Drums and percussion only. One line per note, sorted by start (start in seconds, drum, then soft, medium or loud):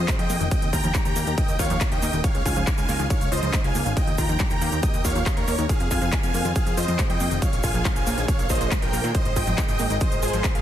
0.08 kick loud
0.08 clap loud
0.08 closed hi-hat medium
0.08 shaker medium
0.19 closed hi-hat medium
0.30 open hi-hat medium
0.30 shaker medium
0.40 closed hi-hat medium
0.40 shaker soft
0.51 kick loud
0.51 closed hi-hat medium
0.51 shaker medium
0.62 closed hi-hat medium
0.73 kick medium
0.73 open hi-hat loud
0.73 shaker medium
0.83 closed hi-hat medium
0.83 shaker soft
0.95 kick loud
0.95 clap loud
0.95 closed hi-hat medium
0.95 shaker medium
1.05 closed hi-hat medium
1.05 shaker soft
1.16 open hi-hat medium
1.16 shaker loud
1.27 closed hi-hat medium
1.27 shaker soft
1.37 kick loud
1.37 closed hi-hat medium
1.37 shaker medium
1.48 closed hi-hat medium
1.48 shaker soft
1.59 kick medium
1.59 open hi-hat loud
1.59 shaker medium
1.65 closed hi-hat medium
1.70 closed hi-hat medium
1.70 shaker soft
1.81 kick loud
1.81 clap loud
1.81 closed hi-hat medium
1.81 shaker medium
1.92 closed hi-hat medium
2.02 open hi-hat loud
2.02 shaker medium
2.13 closed hi-hat medium
2.13 shaker soft
2.24 kick loud
2.24 closed hi-hat medium
2.24 shaker medium
2.35 closed hi-hat medium
2.46 kick medium
2.46 open hi-hat loud
2.46 shaker loud
2.56 closed hi-hat medium
2.56 shaker soft
2.67 kick loud
2.67 clap loud
2.67 closed hi-hat medium
2.67 shaker medium
2.78 closed hi-hat medium
2.78 shaker soft
2.89 open hi-hat loud
2.89 shaker medium
3.00 closed hi-hat medium
3.00 shaker soft
3.10 kick loud
3.10 closed hi-hat medium
3.10 shaker medium
3.21 closed hi-hat medium
3.21 shaker soft
3.32 open hi-hat loud
3.32 shaker medium
3.37 closed hi-hat medium
3.42 closed hi-hat medium
3.42 shaker soft
3.53 kick loud
3.53 clap loud
3.53 closed hi-hat medium
3.53 shaker medium
3.64 closed hi-hat medium
3.75 open hi-hat loud
3.75 shaker medium
3.86 closed hi-hat medium
3.86 shaker soft
3.97 kick loud
3.97 closed hi-hat medium
3.97 shaker soft
4.07 closed hi-hat medium
4.18 kick medium
4.18 open hi-hat loud
4.18 shaker medium
4.29 closed hi-hat medium
4.29 shaker soft
4.39 kick loud
4.39 clap loud
4.39 closed hi-hat medium
4.39 shaker medium
4.50 closed hi-hat medium
4.50 shaker soft
4.62 open hi-hat loud
4.62 shaker medium
4.72 closed hi-hat soft
4.72 shaker soft
4.83 kick loud
4.83 closed hi-hat medium
4.83 shaker medium
4.94 closed hi-hat medium
4.94 shaker soft
5.05 kick medium
5.05 open hi-hat loud
5.05 shaker loud
5.10 closed hi-hat medium
5.15 closed hi-hat medium
5.15 shaker soft
5.26 kick loud
5.26 clap loud
5.26 closed hi-hat medium
5.26 shaker medium
5.37 closed hi-hat medium
5.48 open hi-hat loud
5.48 shaker medium
5.59 closed hi-hat soft
5.59 shaker soft
5.69 kick loud
5.69 closed hi-hat medium
5.69 shaker soft
5.80 closed hi-hat medium
5.91 kick medium
5.91 open hi-hat loud
5.91 shaker medium
6.02 closed hi-hat medium
6.02 shaker soft
6.12 kick loud
6.12 clap loud
6.12 closed hi-hat medium
6.12 shaker soft
6.23 closed hi-hat medium
6.23 shaker soft
6.34 open hi-hat loud
6.34 shaker medium
6.45 closed hi-hat soft
6.45 shaker soft
6.56 kick loud
6.56 closed hi-hat medium
6.56 shaker medium
6.67 closed hi-hat medium
6.67 shaker soft
6.77 open hi-hat loud
6.77 shaker medium
6.83 closed hi-hat medium
6.88 closed hi-hat medium
6.88 shaker soft
6.99 kick loud
6.99 clap loud
6.99 closed hi-hat medium
6.99 shaker medium
7.10 closed hi-hat medium
7.20 open hi-hat medium
7.20 shaker medium
7.31 closed hi-hat soft
7.31 shaker soft
7.42 kick loud
7.42 closed hi-hat medium
7.42 shaker medium
7.53 closed hi-hat medium
7.63 kick medium
7.63 open hi-hat loud
7.63 shaker medium
7.74 closed hi-hat medium
7.74 shaker soft
7.85 kick loud
7.85 clap loud
7.85 closed hi-hat medium
7.85 shaker soft
7.96 closed hi-hat medium
7.96 shaker soft
8.07 open hi-hat medium
8.07 shaker medium
8.18 closed hi-hat medium
8.18 shaker soft
8.28 kick loud
8.28 closed hi-hat medium
8.28 shaker medium
8.39 closed hi-hat medium
8.39 shaker soft
8.49 kick medium
8.49 open hi-hat loud
8.49 shaker medium
8.55 closed hi-hat medium
8.61 closed hi-hat medium
8.61 shaker soft
8.71 kick loud
8.71 clap loud
8.71 closed hi-hat medium
8.71 shaker medium
8.82 closed hi-hat medium
8.93 open hi-hat medium
8.93 shaker loud
9.04 closed hi-hat medium
9.04 shaker soft
9.15 kick loud
9.15 closed hi-hat medium
9.15 shaker soft
9.25 closed hi-hat medium
9.36 kick medium
9.36 open hi-hat loud
9.36 shaker medium
9.47 closed hi-hat medium
9.47 shaker soft
9.58 kick loud
9.58 clap loud
9.58 closed hi-hat medium
9.58 shaker medium
9.68 closed hi-hat medium
9.68 shaker soft
9.79 open hi-hat medium
9.79 shaker medium
9.90 closed hi-hat medium
9.90 shaker soft
10.00 kick loud
10.00 closed hi-hat medium
10.00 shaker medium
10.12 closed hi-hat medium
10.12 shaker soft
10.22 open hi-hat loud
10.22 shaker medium
10.28 closed hi-hat medium
10.33 closed hi-hat medium
10.33 shaker soft
10.44 kick loud
10.44 clap loud
10.44 closed hi-hat medium
10.44 shaker medium
10.55 closed hi-hat medium